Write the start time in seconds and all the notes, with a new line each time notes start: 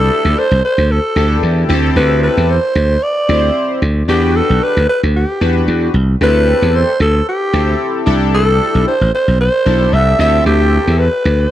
Already playing: D4 E4 G4 A4
0.25 D2
0.39 C5
0.51 C2
0.65 C5
0.78 D2
0.92 A4
1.16 D2 D4 E4 G4 A4
1.43 E2
1.69 D2 C4 E4 G4 A4
1.96 D2 B4
2.23 B4
2.37 E2
2.50 C5
2.75 D2
3.03 D5
3.29 D2 C4 E4 G4 C5
3.82 D2
4.08 E2 D4 F#4 G4 B4
4.36 A4
4.50 B1
4.63 B4
4.77 D2
4.89 B4
5.03 D2
5.16 G4
5.41 E2 D4 F#4 G4 B4
5.68 E2
5.94 C2
6.21 D2 C4 E4 G4 A4 B4
6.62 E2
6.76 C5
7.00 D2 A4
7.29 G4
7.53 D2 C4 E4 G4 A4
8.06 C2 D4 E4 G4 A4
8.35 A4
8.75 B1
8.87 C5
9.01 A1
9.14 C5
9.28 B1
9.41 C5
9.65 B1 D4 E4 G4 A4
9.93 C2 E5
10.19 D2 C4 E4 G4 A4 E5
10.46 D2 G4
10.87 E2
10.99 B4
11.25 D2
11.41 C5